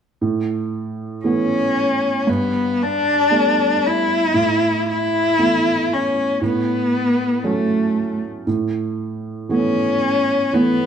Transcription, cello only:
1.25 2.30 C#4 medium
2.29 2.84 B3 medium
2.83 3.87 D4 medium
3.86 4.88 E4 medium
4.90 5.95 E4 medium
5.93 6.43 C#4 medium
6.45 7.48 B3 medium
7.46 8.22 A3 medium
9.54 10.55 C#4 medium
10.54 10.86 B3 medium

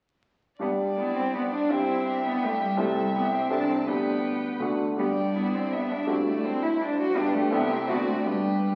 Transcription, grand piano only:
0.59 1.67 G2 soft
0.59 1.67 G3 soft
0.59 1.67 D4 soft
0.59 1.67 G4 soft
1.69 2.75 G2 soft
1.69 2.75 C4 soft
1.69 2.76 E4 soft
1.69 2.76 G4 soft
2.77 3.48 C2 soft
2.77 3.48 C4 soft
2.77 3.49 E4 soft
2.77 3.49 G4 soft
3.50 3.86 C2 soft
3.50 3.86 C4 soft
3.50 3.87 E4 soft
3.50 3.87 A4 soft
3.85 4.58 D2 soft
3.85 4.59 G3 soft
3.85 4.59 D4 soft
3.85 4.59 G4 soft
4.59 4.97 D2 soft
4.59 4.97 A3 soft
4.59 4.96 D4 soft
4.59 4.97 F#4 soft
4.96 6.04 G2 soft
4.96 6.04 G3 soft
4.96 6.05 D4 soft
4.96 6.05 G4 soft
6.06 7.12 G2 soft
6.06 7.13 A3 soft
6.06 7.13 D4 soft
6.06 7.13 F#4 soft
7.14 7.51 G2 soft
7.14 7.51 B3 soft
7.14 7.51 D4 soft
7.14 7.51 G4 soft
7.51 7.87 C2 soft
7.51 7.86 C4 soft
7.51 7.88 E4 soft
7.51 7.88 A4 soft
7.87 8.25 D2 soft
7.87 8.25 C4 soft
7.87 8.24 D4 soft
7.87 8.26 F#4 soft
8.25 8.75 G2 soft
8.25 8.75 B3 soft
8.25 8.75 D4 soft
8.25 8.75 G4 soft

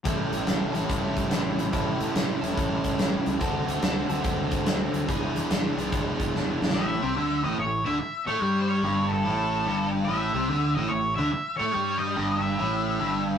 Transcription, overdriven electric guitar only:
0.04 0.75 A2 medium
0.04 0.74 E3 medium
0.04 0.74 G3 medium
0.04 0.73 C#4 medium
0.04 0.73 E4 medium
0.04 0.72 A4 medium
0.72 1.70 A2 medium
0.72 1.72 E3 medium
0.72 1.72 G3 medium
0.72 1.72 C#4 medium
0.72 1.72 E4 medium
0.72 1.74 A4 medium
1.71 2.40 A2 medium
1.71 2.41 E3 medium
1.71 2.41 G3 medium
1.71 2.41 C#4 medium
1.71 2.41 E4 medium
1.71 2.41 A4 medium
2.41 3.40 A2 medium
2.41 3.39 E3 medium
2.41 3.40 G3 medium
2.41 3.40 C#4 medium
2.41 3.40 E4 medium
2.41 3.39 A4 medium
3.40 4.08 D3 medium
3.40 4.08 A3 medium
3.40 4.08 C4 medium
3.40 4.08 F#4 medium
3.40 4.08 A4 medium
4.09 5.07 D3 medium
4.09 5.08 A3 medium
4.09 5.08 C4 medium
4.09 5.07 F#4 medium
4.09 5.07 A4 medium
5.07 5.75 E3 medium
5.07 5.76 B3 medium
5.07 5.76 D4 medium
5.07 5.76 G#4 medium
5.77 6.75 E3 soft
5.77 6.75 B3 medium
5.77 6.74 D4 medium
5.77 6.74 G#4 medium
6.75 7.02 A2 medium
7.02 7.16 C3 loud
7.17 7.43 D3 medium
7.44 7.58 A2 medium
7.59 7.81 A2 medium
7.86 7.99 D3 medium
8.00 muted overdriven electric guitar stroke medium
8.27 8.42 A3 medium
8.42 8.83 G3 medium
8.84 9.25 G2 medium
9.25 9.66 A2 loud
9.66 10.08 G2 loud
10.08 10.34 A2 loud
10.34 10.49 C3 medium
10.49 10.76 D3 medium
10.77 10.90 A2 medium
10.91 11.13 A2 medium
11.18 11.32 D3 medium
11.33 muted overdriven electric guitar stroke medium
11.60 11.74 A3 medium
11.74 12.16 G3 loud
12.16 12.58 G2 loud
12.59 13.00 A2 loud
13.00 13.38 G2 loud

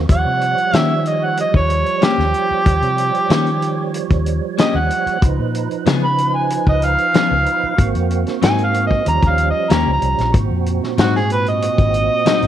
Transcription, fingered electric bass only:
0.09 0.24 D#2 medium
0.26 0.54 C3 medium
0.73 1.44 D#3 medium
1.54 1.82 D#2 medium
2.18 2.32 D#2 medium
2.51 muted fingered electric bass stroke soft
2.66 2.80 D#2 medium
2.82 3.10 C3 medium
3.30 4.00 D#3 medium
4.10 4.38 D#2 loud
4.74 4.88 D#2 medium
5.06 muted fingered electric bass stroke soft
5.22 5.36 C#2 medium
5.39 5.67 A#2 medium
5.86 6.56 C#3 medium
6.67 6.94 C#2 medium
7.31 7.45 C#2 medium
7.63 muted fingered electric bass stroke soft
7.79 7.93 G#1 medium
7.95 8.23 F2 medium
8.43 8.98 G#2 medium
9.07 9.21 D#2 medium
9.22 9.50 D#2 medium
9.71 9.85 D#2 medium
9.87 10.01 C#2 medium
10.02 10.17 C2 medium
10.19 10.33 A#1 medium
10.34 10.48 G#1 medium
10.51 10.79 F2 medium
10.98 11.68 G#2 medium
11.78 12.06 G#1 medium
12.43 12.47 G#1 medium

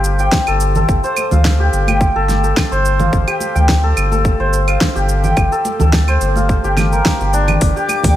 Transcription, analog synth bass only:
0.00 0.29 G1 medium
0.48 0.85 G1 loud
0.89 1.01 G1 medium
1.32 1.69 D2 loud
1.73 2.11 G1 medium
2.16 2.53 G1 medium
2.71 3.09 G1 medium
3.13 3.25 G1 medium
3.56 3.93 D2 loud
3.97 4.35 G1 medium
4.40 4.77 G1 medium
4.96 5.33 G1 loud
5.37 5.49 G1 loud
5.80 6.17 D2 loud
6.21 6.59 G1 medium
6.64 7.01 G1 medium
7.20 7.57 G1 loud
7.62 7.74 G1 loud
8.04 8.16 D2 loud

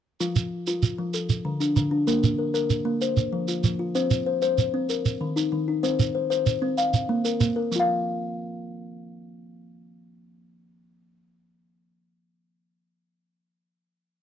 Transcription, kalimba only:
0.20 0.52 F3 medium
0.20 0.66 F4 medium
0.68 0.99 F4 medium
0.98 1.14 F3 medium
1.14 1.61 A4 medium
1.45 1.75 D3 medium
1.60 1.90 D4 medium
1.76 2.08 D3 medium
1.91 2.23 D4 medium
2.07 2.39 A#3 medium
2.07 2.37 A#4 medium
2.38 2.53 A#4 medium
2.54 3.01 A#4 medium
2.85 3.01 A#3 medium
3.01 3.48 C5 medium
3.33 3.62 F3 medium
3.48 3.78 F4 medium
3.64 3.95 F3 medium
3.79 4.11 F4 medium
3.95 4.27 C4 medium
3.95 4.25 C5 medium
4.26 4.41 C5 medium
4.42 4.74 C5 medium
4.74 4.90 C4 medium
4.89 5.37 A#4 medium
5.21 5.51 D#3 medium
5.36 5.67 D#4 medium
5.52 5.84 D#3 medium
5.68 5.99 D#4 medium
5.83 6.15 C4 medium
5.83 6.14 C5 medium
6.15 6.29 C5 medium
6.30 6.78 C5 medium
6.62 6.78 C4 medium
6.78 7.25 F5 medium
7.09 7.39 A#3 medium
7.25 7.55 A#4 medium
7.40 7.72 A#3 medium
7.56 7.87 A#4 medium
7.72 12.03 F3 medium
7.76 12.07 F4 medium
7.76 12.11 F5 medium

